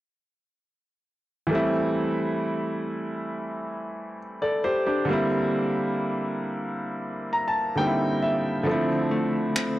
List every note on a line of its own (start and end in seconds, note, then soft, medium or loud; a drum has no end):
1.47 5.03 E3 medium
1.47 5.04 G3 medium
1.51 5.05 A3 medium
1.51 5.05 C4 medium
1.55 4.17 E4 medium
4.42 4.63 A4 soft
4.42 4.63 D5 medium
4.64 4.85 G4 medium
4.64 4.85 C5 medium
4.87 5.29 D4 medium
4.87 5.29 G4 medium
5.05 7.71 D3 medium
5.05 7.72 G3 medium
5.05 7.73 A#3 medium
5.11 7.74 C4 medium
5.11 7.75 E4 medium
7.33 7.46 A#5 medium
7.48 7.75 A5 medium
7.76 8.62 D3 medium
7.76 8.66 G3 soft
7.76 8.67 A#3 soft
7.76 8.67 C4 soft
7.76 8.19 G5 medium
7.80 7.85 D#4 soft
7.86 8.70 E4 medium
8.22 8.64 E5 medium
8.63 9.79 D3 medium
8.63 9.79 F3 medium
8.67 9.79 A3 medium
8.67 9.79 C4 medium
8.71 9.79 E4 medium
9.11 9.79 A3 medium
9.56 9.79 C4 medium
9.56 finger snap loud